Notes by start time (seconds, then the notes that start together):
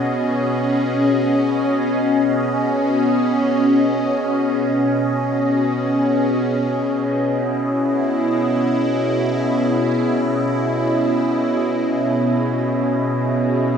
Already playing: B2 B3 C#4 G#4 C#5 D#5
4.73 B2
6.70 E4